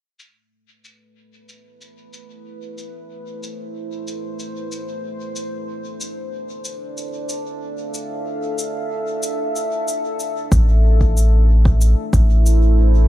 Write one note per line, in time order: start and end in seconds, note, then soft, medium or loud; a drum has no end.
0.20 5.36 A3 medium
0.20 cabasa medium
0.61 6.35 B4 medium
0.85 cabasa medium
1.13 5.36 E4 medium
1.49 cabasa medium
1.81 cabasa soft
2.13 cabasa medium
2.36 6.99 C5 medium
2.78 cabasa medium
3.43 cabasa medium
4.08 cabasa medium
4.39 cabasa soft
4.72 cabasa medium
5.35 12.59 D4 medium
5.35 cabasa medium
5.92 11.97 A4 medium
6.01 cabasa medium
6.65 cabasa medium
6.97 cabasa soft
7.06 12.59 E5 medium
7.13 10.52 F5 medium
7.29 cabasa medium
7.94 cabasa medium
8.58 cabasa medium
9.23 cabasa medium
9.56 cabasa soft
9.88 cabasa medium
10.20 cabasa soft
10.52 11.95 A1 medium
10.52 13.08 A3 medium
10.52 kick loud
10.52 cabasa medium
10.74 13.08 E4 medium
11.01 kick medium
11.17 cabasa medium
11.65 kick medium
11.81 cabasa medium
12.03 13.08 C5 medium
12.13 13.07 A1 medium
12.13 kick medium
12.13 cabasa soft
12.26 13.08 B4 medium
12.46 cabasa medium